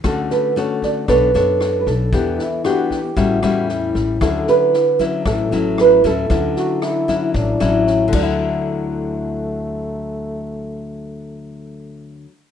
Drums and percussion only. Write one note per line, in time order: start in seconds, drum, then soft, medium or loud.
0.04 kick medium
0.04 cross-stick medium
0.04 snare soft
0.30 snare soft
0.56 snare soft
0.82 kick soft
0.82 snare soft
1.08 kick medium
1.08 cross-stick medium
1.08 snare soft
1.35 snare soft
1.60 cross-stick soft
1.60 snare soft
1.86 kick soft
1.86 snare soft
2.13 kick medium
2.13 snare soft
2.39 snare soft
2.65 cross-stick medium
2.65 snare soft
2.91 kick soft
2.91 snare soft
3.17 kick medium
3.17 snare soft
3.43 cross-stick medium
3.43 snare soft
3.69 snare soft
3.95 kick soft
3.95 snare soft
4.21 kick medium
4.21 cross-stick medium
4.21 snare soft
4.47 snare soft
4.73 snare soft
4.99 kick soft
4.99 snare soft
5.26 kick medium
5.26 cross-stick medium
5.26 snare soft
5.52 snare soft
5.78 cross-stick medium
5.78 snare soft
6.04 kick soft
6.04 snare soft
6.30 kick medium
6.30 snare soft
6.56 snare soft
6.82 cross-stick medium
6.82 snare soft
7.08 kick soft
7.08 snare soft
7.34 kick medium
7.34 snare soft
7.60 cross-stick medium
7.60 snare soft
7.87 snare soft
8.13 kick medium
8.13 crash medium